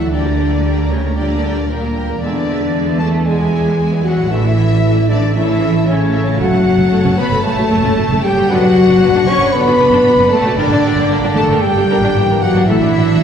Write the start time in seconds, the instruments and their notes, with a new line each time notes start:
Already playing: double bass section D2, cello section E3, french horn section E4, flute E5, violin section E5
0.00 viola section F#3 A4, violin section D5 F#5
0.10 trombone section A#2 G3, cello section D3, viola section G3 G4, french horn section D4, violin section A#4 D5 G5, flute D5
0.25 viola section A#3 A#4, violin section D5 A#5
0.39 viola section G3 G4, violin section A#4 G5
0.50 viola section A#3 A#4, violin section D5 A#5
0.65 viola section G3 G4, violin section A#4 G5
0.78 viola section A#3 A#4, violin section D5 A#5
0.90 cello section C#3, viola section G3 G4, french horn section C#4, violin section A#4 C#5 G5, flute C#5
1.03 viola section A#3 A#4, violin section D5 A#5
1.16 trombone section A#2 G3, cello section D3, viola section G3 G4, french horn section D4, violin section A#4 D5 G5, flute D5
1.30 viola section A#3 A#4, violin section D5 A#5
1.43 viola section G3 G4, violin section A#4 G5
1.57 viola section A#3 A#4, violin section D5 A#5
1.68 cello section A#2, viola section G3 G4, french horn section A#3, flute A#4, violin section A#4 G5
1.83 viola section A#3 A#4, violin section D5 A#5
1.95 viola section G3 G4, violin section A#4 G5
2.08 viola section A#3 A#4, violin section D5 A#5
2.20 double bass section E2, trombone section B2 G#3, cello section D3, viola section G#3 G#4, french horn section D4, flute D5, violin section D5 E5
2.34 viola section B3 E4, violin section B4 D5
2.47 viola section G#3 G#4, violin section D5 E5
2.61 viola section B3 E4, violin section B4 D5
2.73 viola section G#3 G#4, violin section D5 E5
2.87 viola section B3 E4, violin section B4 D5
2.99 viola section G#3 G#4, cello section A3, french horn section A4, violin section D5 E5 A5, flute A5
3.12 viola section B3 E4, violin section B4 D5
3.26 trombone section B2 G#3, viola section G#3 G#4, cello section G#3, french horn section G#4, violin section D5 E5 G#5, flute G#5
3.39 viola section B3 E4, violin section B4 D5
3.52 viola section G#3 G#4, violin section D5 E5
3.65 viola section B3 E4, violin section B4
3.69 violin section D5
3.78 viola section G#3 G#4, violin section E5
3.82 violin section D5
3.91 viola section B3 E4, violin section B4 D5
4.03 cello section F#3, viola section G#3 G#4, french horn section F#4, violin section D5 E5 F#5, flute F#5
4.18 viola section B3 E4, violin section B4 D5
4.29 double bass section A1, trombone section D3 A3, cello section E3, viola section E3 A4, french horn section E4, flute E5, violin section E5
4.44 viola section A3 E4, violin section D5
4.57 viola section E3 A4, violin section E5
4.69 viola section A3 E4, violin section D5
4.81 viola section E3 A4, violin section E5
4.95 viola section A3 E4, violin section D5
5.07 cello section D3, viola section E3 A4, french horn section D4, flute D5, violin section D5 E5
5.20 viola section A3 E4, violin section D5
5.33 trombone section C#3 A3, cello section E3, viola section C#4 A4, french horn section E4, violin section E5, flute E5
5.44 viola section E4, violin section C#5 A5
5.49 viola section A3
5.59 viola section C#4 A4, violin section E5
5.72 viola section A3 E4, violin section C#5 A5
5.86 cello section C#3, french horn section C#4, viola section C#4 A4, violin section C#5 E5, flute C#5
6.00 viola section A3 E4, violin section C#5 A5
6.12 viola section C#4 A4, violin section E5
6.25 viola section A3 E4, violin section C#5 A5
6.37 double bass section F#1, trombone section C#3, cello section F#3, viola section A3 A4, french horn section F#4, violin section C#5 A5, flute F#5
6.41 trombone section A3, violin section F#5
6.53 double bass section F#1, viola section A3 C#4
6.66 double bass section F#1, viola section A3 F#4
6.78 double bass section F#1, viola section A3 C#4
6.92 double bass section F#1, viola section A3 A4
7.05 double bass section F#1, viola section A3 C#4
7.18 double bass section F#1, viola section A3 F#4, cello section B3, french horn section B4, flute B5, violin section B5
7.31 double bass section F#1, viola section A3 A4
7.43 trombone section C#3 A3, cello section A3, french horn section A4, flute A5, violin section A5
7.56 double bass section F#1, viola section A3 F#4
7.70 double bass section F#1, viola section A3 A4
7.83 double bass section F#1, viola section A3 C#4
7.96 double bass section F#1, viola section A3 F#4
8.09 double bass section F#1, viola section A3 A4
8.22 cello section G3, french horn section G4, violin section G5, flute G5
8.35 double bass section F#1, viola section A3 F#4
8.48 double bass section F#1, trombone section D3 B3, cello section F#3, viola section D4 B4, french horn section F#4, violin section D5 F#5, flute F#5
8.61 double bass section F#1, viola section D4
8.75 double bass section F#1, viola section D4 F#4
8.88 double bass section F#1, viola section D4
9.00 double bass section F#1, viola section D4 B4
9.13 double bass section F#1, viola section D4
9.25 double bass section F#1, cello section C#4, viola section D4 F#4, french horn section C#5, violin section C#6, flute C#6
9.40 double bass section F#1, viola section D4 B4
9.52 trombone section D3 B3, cello section B3, french horn section B4, flute B5, violin section B5
9.65 double bass section F#1, viola section D4 F#4
9.79 double bass section F#1, viola section D4 B4
9.90 double bass section F#1, viola section D4
10.04 double bass section F#1, viola section D4 F#4
10.16 double bass section F#1, viola section D4 B4
10.31 cello section A3, french horn section A4, violin section A5, flute A5
10.44 double bass section F#1, viola section D4 F#4
10.55 double bass section G1, cello section D3, trombone section D3, french horn section D4, viola section D4 A#4, violin section D5 G5, flute D5
10.60 trombone section A#3
10.69 double bass section G1, viola section D4
10.83 double bass section G1, viola section D4 G4
10.97 double bass section G1, viola section D4
11.09 double bass section G1, viola section D4 A#4
11.22 double bass section G1, viola section D4
11.35 double bass section G1, cello section A3, viola section D4 G4, french horn section A4, flute A5, violin section A5
11.48 double bass section G1, viola section D4 A#4
11.61 trombone section D3 A#3, cello section G3, french horn section G4, flute G5, violin section G5
11.74 double bass section G1, viola section D4 G4
11.88 double bass section G1, viola section D4 A#4
12.01 double bass section G1, viola section D4
12.14 double bass section G1, trombone section E3, viola section D4 G4
12.27 double bass section G1, viola section D4 A#4
12.41 cello section F#3, french horn section F#4, flute F#5, violin section F#5
12.54 double bass section G1, viola section D4 G4
12.66 double bass section A1, cello section E3, trombone section F#3 D4, viola section A3 A4, french horn section E4, violin section D5 E5 F#5, flute E5
12.79 double bass section A1, viola section A3 D4
12.92 double bass section A1
12.97 viola section A3 F#4
13.06 double bass section A1
13.10 viola section A3 D4
13.19 double bass section A1